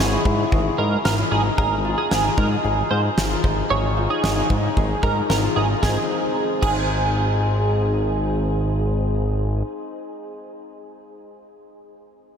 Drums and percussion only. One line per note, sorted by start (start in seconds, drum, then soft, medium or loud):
0.25 kick medium
0.52 kick medium
1.05 snare loud
1.58 kick loud
2.11 snare loud
2.38 kick medium
3.18 snare loud
3.44 kick medium
4.24 snare loud
4.50 kick medium
4.77 kick medium
5.03 kick medium
5.30 snare loud
5.83 kick loud
5.83 snare medium
6.63 kick loud
6.63 crash medium